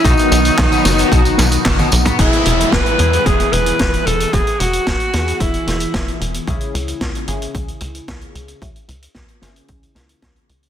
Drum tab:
HH |xxxxxxxxxxxxxxxx|xxxxxxxxxxxxxxxx|xxxxxxxxxxxxxxxx|xxxxxxxxxxxxxxxx|
TB |xxxxxxxxxxxx-xxx|----------------|----------------|----------------|
CP |----x-------x---|----------------|----------------|----------------|
SD |----o-o---o-o---|----o-------o---|----o-o---o-o---|----o-------o---|
T1 |------------oo--|----------------|----------------|----------------|
T2 |---------------o|----------------|----------------|----------------|
BD |o---o---o---o---|o---o---o---o---|o---o---o---o---|o---o---o---o---|

HH |xxxxxxxxxxxxxxxx|
TB |----------------|
CP |----------------|
SD |----o-o---o-o---|
T1 |----------------|
T2 |----------------|
BD |o---o---o---o---|